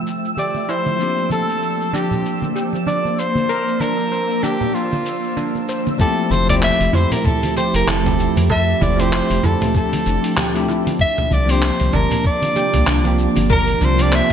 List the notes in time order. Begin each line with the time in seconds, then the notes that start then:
Already playing: F3 A3 C4 E4 G4 E5 G5 E6
0.07 shaker
0.25 shaker
0.37 G4 D5, high conga, shaker
0.55 muted conga, shaker
0.69 E4 C5, shaker
0.86 muted conga, high conga, shaker
0.97 F3 A#3 C4 C5 D5, shaker
1.01 D4 G4
1.17 shaker
1.30 A4, muted conga, high conga, shaker
1.49 shaker
1.62 shaker
1.81 shaker
1.93 D4 G4, high conga, shaker
2.11 low conga, shaker
2.25 shaker
2.42 high conga, shaker
2.56 G4, shaker
2.73 muted conga, shaker
2.87 D4 D5, high conga, shaker
3.05 muted conga, shaker
3.19 C5, shaker
3.35 high conga, shaker
3.49 A#4, shaker
3.68 shaker
3.80 D4 A#4, muted conga, high conga, shaker
3.99 shaker
4.12 C5, shaker
4.31 shaker
4.43 D4 G4, high conga, shaker
4.61 low conga, shaker
4.74 F4, shaker
4.92 muted conga, high conga, shaker
5.06 shaker
5.24 shaker
5.37 D4, high conga, shaker
5.55 muted conga, shaker
5.69 C5, shaker
5.86 muted conga, high conga, shaker
5.98 F3 A3 C4 E4 G4 A4, kick, shaker
6.18 shaker
6.30 F1 C5, high conga, shaker
6.46 F3 A3 C4 D5, mid tom, open hi-hat, shaker
6.51 E4 G4
6.62 E5, clap, shaker
6.80 F1, open hi-hat, muted conga, shaker
6.93 F2 E4 C5, high conga, shaker
7.11 A#4, open hi-hat, low conga, shaker
7.25 A4, kick, mid tom, shaker
7.43 open hi-hat, high conga, shaker
7.56 G4 C5, muted conga, shaker
7.74 F1 A#4, open hi-hat, shaker
7.87 F1 E4 A4, clap, high conga, shaker
8.03 F3 A3 C4 E4 G4, mid tom, open hi-hat, muted conga, shaker
8.20 shaker
8.36 F2, open hi-hat, muted conga, high conga, shaker
8.49 D4 A4 E5, kick, shaker
8.69 shaker
8.81 F1 E4 D5, mid tom, high conga, shaker
8.96 F3 A3 C4, open hi-hat, shaker
9.00 E4 G4 C5
9.12 C5, clap, shaker
9.30 F1, open hi-hat, muted conga, shaker
9.43 F2 E4 A4, kick, high conga, shaker
9.61 mid tom, open hi-hat, low conga, shaker
9.75 A4, kick, shaker
9.93 open hi-hat, high conga, shaker
10.06 F1, shaker
10.24 open hi-hat, shaker
10.37 G4, clap, mid tom, high conga, shaker
10.54 F3 A3 C4 E4 G4, open hi-hat, shaker
10.68 E4, muted conga, shaker
10.87 open hi-hat, high conga, shaker
10.99 C3 A#3 D4 F4 E5, kick, shaker
11.18 mid tom, shaker
11.31 C2 D5, high conga, shaker
11.46 F3 A#3 C4, open hi-hat, shaker
11.51 D4 G4 C5
11.62 clap, shaker
11.80 C2, open hi-hat, muted conga, shaker
11.93 G1 D4 A#4, mid tom, high conga, shaker
12.11 open hi-hat, low conga, shaker
12.25 D5, kick, shaker
12.42 open hi-hat, high conga, shaker
12.56 G4, muted conga, shaker
12.74 C2, mid tom, open hi-hat, shaker
12.86 C2 D4, clap, high conga, shaker
13.04 F3 A#3 C4 D4 G4, open hi-hat, muted conga, shaker
13.19 shaker
13.36 G1, open hi-hat, muted conga, high conga, shaker
13.50 A#4, kick, mid tom, shaker
13.68 open hi-hat, shaker
13.81 C2 D4 C5, high conga, shaker
13.96 F3 A#3 C4, open hi-hat, shaker
14.01 D4 G4 D5
14.12 C5 E5, clap, shaker